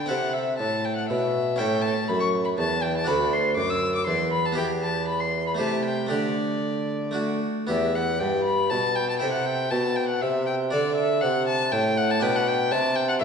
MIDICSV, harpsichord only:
0, 0, Header, 1, 2, 480
1, 0, Start_track
1, 0, Tempo, 497100
1, 98, Time_signature, 3, 2, 24, 8
1, 4898, Tempo, 522193
1, 7778, Tempo, 500417
1, 12610, End_track
2, 0, Start_track
2, 0, Title_t, "Harpsichord"
2, 0, Program_c, 0, 6
2, 58, Note_on_c, 0, 60, 43
2, 70, Note_on_c, 0, 64, 45
2, 86, Note_on_c, 0, 69, 44
2, 99, Note_on_c, 0, 48, 50
2, 536, Note_off_c, 0, 48, 0
2, 574, Note_on_c, 0, 45, 51
2, 1021, Note_off_c, 0, 45, 0
2, 1064, Note_on_c, 0, 47, 55
2, 1481, Note_off_c, 0, 60, 0
2, 1487, Note_off_c, 0, 64, 0
2, 1495, Note_off_c, 0, 69, 0
2, 1502, Note_off_c, 0, 47, 0
2, 1506, Note_on_c, 0, 61, 47
2, 1522, Note_on_c, 0, 64, 48
2, 1536, Note_on_c, 0, 69, 46
2, 1550, Note_on_c, 0, 45, 53
2, 1980, Note_off_c, 0, 45, 0
2, 2025, Note_on_c, 0, 42, 59
2, 2458, Note_off_c, 0, 42, 0
2, 2492, Note_on_c, 0, 40, 60
2, 2915, Note_off_c, 0, 61, 0
2, 2923, Note_off_c, 0, 64, 0
2, 2930, Note_off_c, 0, 69, 0
2, 2933, Note_off_c, 0, 40, 0
2, 2936, Note_on_c, 0, 62, 46
2, 2952, Note_on_c, 0, 66, 49
2, 2962, Note_on_c, 0, 69, 46
2, 2982, Note_on_c, 0, 38, 50
2, 3414, Note_off_c, 0, 38, 0
2, 3454, Note_on_c, 0, 42, 59
2, 3892, Note_off_c, 0, 42, 0
2, 3934, Note_on_c, 0, 40, 56
2, 4356, Note_off_c, 0, 62, 0
2, 4364, Note_off_c, 0, 66, 0
2, 4366, Note_on_c, 0, 59, 46
2, 4369, Note_off_c, 0, 69, 0
2, 4377, Note_off_c, 0, 40, 0
2, 4379, Note_on_c, 0, 64, 46
2, 4394, Note_on_c, 0, 67, 49
2, 4412, Note_on_c, 0, 40, 50
2, 5323, Note_off_c, 0, 59, 0
2, 5329, Note_off_c, 0, 64, 0
2, 5333, Note_on_c, 0, 57, 45
2, 5337, Note_off_c, 0, 40, 0
2, 5337, Note_off_c, 0, 67, 0
2, 5346, Note_on_c, 0, 64, 47
2, 5361, Note_on_c, 0, 67, 44
2, 5375, Note_on_c, 0, 48, 51
2, 5800, Note_off_c, 0, 57, 0
2, 5811, Note_on_c, 0, 57, 40
2, 5820, Note_off_c, 0, 48, 0
2, 5826, Note_on_c, 0, 62, 40
2, 5828, Note_off_c, 0, 64, 0
2, 5830, Note_off_c, 0, 67, 0
2, 5841, Note_on_c, 0, 67, 40
2, 5854, Note_on_c, 0, 50, 44
2, 6761, Note_off_c, 0, 57, 0
2, 6772, Note_on_c, 0, 57, 41
2, 6775, Note_off_c, 0, 62, 0
2, 6786, Note_on_c, 0, 62, 44
2, 6787, Note_off_c, 0, 67, 0
2, 6800, Note_on_c, 0, 66, 42
2, 7028, Note_off_c, 0, 50, 0
2, 7266, Note_off_c, 0, 57, 0
2, 7274, Note_off_c, 0, 62, 0
2, 7280, Note_off_c, 0, 66, 0
2, 7283, Note_on_c, 0, 59, 48
2, 7295, Note_on_c, 0, 67, 44
2, 7304, Note_on_c, 0, 40, 54
2, 7739, Note_off_c, 0, 40, 0
2, 7779, Note_on_c, 0, 43, 58
2, 8227, Note_off_c, 0, 43, 0
2, 8271, Note_on_c, 0, 47, 60
2, 8694, Note_off_c, 0, 59, 0
2, 8700, Note_off_c, 0, 67, 0
2, 8710, Note_off_c, 0, 47, 0
2, 8727, Note_on_c, 0, 64, 46
2, 8741, Note_on_c, 0, 69, 50
2, 8754, Note_on_c, 0, 48, 56
2, 9190, Note_off_c, 0, 48, 0
2, 9234, Note_on_c, 0, 47, 59
2, 9673, Note_off_c, 0, 47, 0
2, 9716, Note_on_c, 0, 48, 65
2, 10141, Note_off_c, 0, 64, 0
2, 10148, Note_off_c, 0, 69, 0
2, 10154, Note_off_c, 0, 48, 0
2, 10176, Note_on_c, 0, 62, 52
2, 10189, Note_on_c, 0, 69, 52
2, 10203, Note_on_c, 0, 50, 58
2, 10636, Note_off_c, 0, 50, 0
2, 10682, Note_on_c, 0, 48, 64
2, 11119, Note_off_c, 0, 48, 0
2, 11151, Note_on_c, 0, 45, 64
2, 11586, Note_off_c, 0, 62, 0
2, 11593, Note_off_c, 0, 45, 0
2, 11593, Note_off_c, 0, 69, 0
2, 11606, Note_on_c, 0, 62, 59
2, 11619, Note_on_c, 0, 71, 52
2, 11633, Note_on_c, 0, 47, 60
2, 12071, Note_off_c, 0, 47, 0
2, 12108, Note_on_c, 0, 48, 71
2, 12541, Note_off_c, 0, 48, 0
2, 12610, Note_off_c, 0, 62, 0
2, 12610, Note_off_c, 0, 71, 0
2, 12610, End_track
0, 0, End_of_file